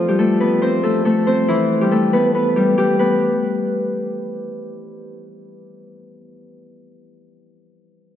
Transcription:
Already playing: F3 A3 C4 D4 F4 A4 C5
0.08 G3 G4
0.19 A3 A4
0.40 B3 B4
0.62 C4 C5
0.83 A3 A4
1.05 A3 A4
1.27 C4 C5
1.48 E3 E4
1.81 G3 G4
1.91 A3 A4
2.13 B3 B4
2.35 B3 B4
2.56 G3 G4
2.78 G3 G4
2.99 B3 B4

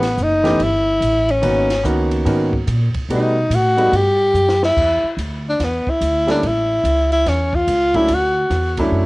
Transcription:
Already playing: A1 B3
0.03 snare, ride
0.18 F#1, hi-hat pedal
0.23 D#4
0.43 E3 A3 B3 C#4 G4, snare, ride
0.60 G1 E4, ride
1.01 A1, hi-hat pedal, ride
1.29 C#4, ride
1.42 G#1 D#3 A#3 B3 C#4 F#4, ride
1.70 snare, ride
1.83 C#2 D#3 A#3 B3 C#4 F#4, hi-hat pedal
2.11 ride
2.25 G#2 D#3 A#3 B3 C#4 F#4, ride
2.53 kick
2.67 A#2, hi-hat pedal, ride
2.94 muted upright bass stroke, kick, ride
3.08 B2 G3 A3 B3 D#4 F#4, ride
3.14 D#4
3.50 A2, hi-hat pedal, ride
3.55 F#4
3.77 G3 A3 B3 D#4 F#4, ride
3.92 G2 G4, ride
4.34 F#2, hi-hat pedal
4.49 snare
4.63 E4, snare
4.77 E2, kick, crash
5.03 muted upright bass stroke
5.17 D2, hi-hat pedal, ride
5.49 D4
5.60 E2, snare, ride
5.64 B3
5.86 E4, muted upright bass stroke, kick
6.01 D2, hi-hat pedal, ride
6.27 G3 A#3 C#4 E4 A4, snare, ride
6.31 D4
6.43 A1, ride
6.47 E4
6.84 C#2, hi-hat pedal, ride
7.12 E4, ride
7.26 E2 C#4, snare, ride
7.53 F4, kick
7.67 C#2, hi-hat pedal, ride
7.94 F#3 A3 C#4 D4 E4, kick, ride
8.08 D2, ride
8.14 F#4
8.50 E2, snare, hi-hat pedal, ride
8.77 F#3 A3 C#4 D4 E4, kick, ride
8.91 F#2

